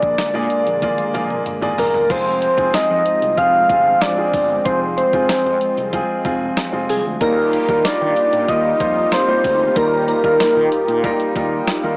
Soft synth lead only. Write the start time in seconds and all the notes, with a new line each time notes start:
Already playing: D5
1.79 A#4
2.11 C5
2.75 D#5
3.38 F5
4.02 D5
4.66 C5
4.97 C5
6.90 G#4
7.21 A#4
7.86 D5
8.49 D#5
9.14 C5
9.77 A#4
10.09 A#4